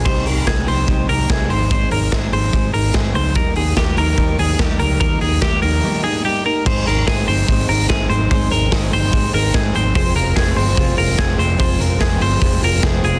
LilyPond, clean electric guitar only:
\new Staff \with { instrumentName = "Clean electric guitar" } { \time 4/4 \key aes \major \tempo 4 = 146 c''8 bes'8 aes'8 c''4 bes'8 aes'8 c''8 | c''8 bes'8 aes'8 c''4 bes'8 aes'8 c''8 | bes'8 aes'8 g'8 bes'4 aes'8 g'8 bes'8 | bes'8 aes'8 g'8 bes'4 aes'8 g'8 bes'8 |
c''8 bes'8 aes'8 c''4 bes'8 aes'8 c''8 | c''8 bes'8 aes'8 c''4 bes'8 aes'8 c''8 | c''8 bes'8 aes'8 c''4 bes'8 aes'8 c''8 | c''8 bes'8 aes'8 c''4 bes'8 aes'8 aes'8 | }